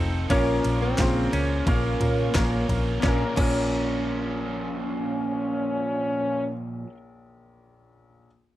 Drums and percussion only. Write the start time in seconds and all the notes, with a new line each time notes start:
0.30 kick, ride
0.64 ride
0.98 kick, snare, clap, ride
1.33 ride
1.67 kick, ride
2.01 floor tom, ride
2.35 kick, snare, clap, ride
2.69 floor tom, ride
3.03 kick, snare, clap
3.37 kick, clap, crash